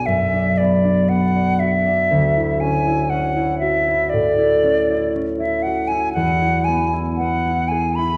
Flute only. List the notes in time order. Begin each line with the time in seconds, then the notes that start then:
0.06 E5
0.58 D5
1.09 F#5
1.60 E5
2.60 G#5
3.10 F#5
3.59 E5
4.10 D5
5.39 E5
5.63 F#5
5.88 G#5
6.13 F#5
6.64 G#5
7.16 F#5
7.68 G#5
7.95 B5